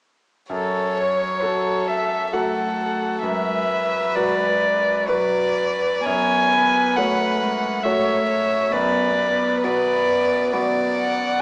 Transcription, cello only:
0, 0, Header, 1, 2, 480
1, 0, Start_track
1, 0, Key_signature, 3, "minor"
1, 0, Tempo, 913242
1, 269, Time_signature, 3, 2, 24, 8
1, 2668, Tempo, 975610
1, 3148, Tempo, 910470
1, 3628, Tempo, 887574
1, 6037, End_track
2, 0, Start_track
2, 0, Title_t, "Cello"
2, 0, Program_c, 0, 42
2, 268, Note_on_c, 0, 54, 36
2, 1223, Note_on_c, 0, 57, 33
2, 1231, Note_off_c, 0, 54, 0
2, 1696, Note_off_c, 0, 57, 0
2, 1699, Note_on_c, 0, 56, 33
2, 1938, Note_off_c, 0, 56, 0
2, 1942, Note_on_c, 0, 54, 30
2, 2180, Note_off_c, 0, 54, 0
2, 2187, Note_on_c, 0, 56, 37
2, 2668, Note_on_c, 0, 54, 37
2, 2675, Note_off_c, 0, 56, 0
2, 3145, Note_off_c, 0, 54, 0
2, 3148, Note_on_c, 0, 59, 37
2, 3634, Note_on_c, 0, 57, 42
2, 3642, Note_off_c, 0, 59, 0
2, 3867, Note_on_c, 0, 56, 40
2, 3875, Note_off_c, 0, 57, 0
2, 4106, Note_on_c, 0, 57, 36
2, 4114, Note_off_c, 0, 56, 0
2, 4582, Note_off_c, 0, 57, 0
2, 4585, Note_on_c, 0, 59, 44
2, 4824, Note_off_c, 0, 59, 0
2, 4826, Note_on_c, 0, 59, 40
2, 5555, Note_on_c, 0, 54, 46
2, 5563, Note_off_c, 0, 59, 0
2, 6029, Note_off_c, 0, 54, 0
2, 6037, End_track
0, 0, End_of_file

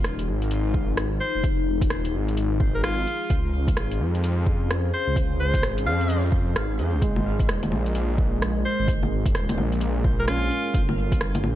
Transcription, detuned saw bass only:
0, 0, Header, 1, 2, 480
1, 0, Start_track
1, 0, Key_signature, -4, "minor"
1, 0, Tempo, 465116
1, 1488, Time_signature, 4, 2, 24, 8
1, 11923, End_track
2, 0, Start_track
2, 0, Title_t, "Detuned saw bass"
2, 0, Program_c, 0, 39
2, 52, Note_on_c, 0, 27, 84
2, 288, Note_on_c, 0, 32, 99
2, 303, Note_off_c, 0, 27, 0
2, 1236, Note_off_c, 0, 32, 0
2, 1395, Note_on_c, 0, 29, 91
2, 1963, Note_on_c, 0, 27, 88
2, 1979, Note_off_c, 0, 29, 0
2, 2208, Note_on_c, 0, 32, 95
2, 2224, Note_off_c, 0, 27, 0
2, 3156, Note_off_c, 0, 32, 0
2, 3407, Note_on_c, 0, 37, 96
2, 3888, Note_on_c, 0, 32, 83
2, 3903, Note_off_c, 0, 37, 0
2, 4124, Note_on_c, 0, 41, 94
2, 4140, Note_off_c, 0, 32, 0
2, 5074, Note_off_c, 0, 41, 0
2, 5235, Note_on_c, 0, 37, 92
2, 5803, Note_on_c, 0, 32, 86
2, 5818, Note_off_c, 0, 37, 0
2, 6043, Note_on_c, 0, 41, 95
2, 6059, Note_off_c, 0, 32, 0
2, 6763, Note_off_c, 0, 41, 0
2, 6769, Note_on_c, 0, 32, 78
2, 7008, Note_on_c, 0, 41, 102
2, 7024, Note_off_c, 0, 32, 0
2, 7153, Note_on_c, 0, 37, 98
2, 7168, Note_off_c, 0, 41, 0
2, 7236, Note_off_c, 0, 37, 0
2, 7243, Note_on_c, 0, 32, 89
2, 7731, Note_on_c, 0, 27, 83
2, 7747, Note_off_c, 0, 32, 0
2, 7966, Note_on_c, 0, 34, 97
2, 7981, Note_off_c, 0, 27, 0
2, 8915, Note_off_c, 0, 34, 0
2, 9074, Note_on_c, 0, 32, 92
2, 9648, Note_on_c, 0, 27, 89
2, 9664, Note_off_c, 0, 32, 0
2, 9887, Note_on_c, 0, 34, 101
2, 9902, Note_off_c, 0, 27, 0
2, 10836, Note_off_c, 0, 34, 0
2, 11085, Note_on_c, 0, 31, 91
2, 11555, Note_off_c, 0, 31, 0
2, 11570, Note_on_c, 0, 31, 84
2, 11807, Note_on_c, 0, 34, 100
2, 11823, Note_off_c, 0, 31, 0
2, 11923, Note_off_c, 0, 34, 0
2, 11923, End_track
0, 0, End_of_file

